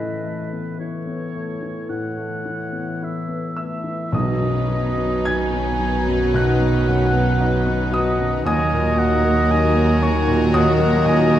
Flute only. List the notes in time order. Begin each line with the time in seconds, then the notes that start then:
Already playing: D#5
0.78 C#5
3.57 E5
4.11 D#5
5.26 G#5
6.34 F#5
7.94 D#5
8.44 D#5
10.01 C#5
10.53 D#5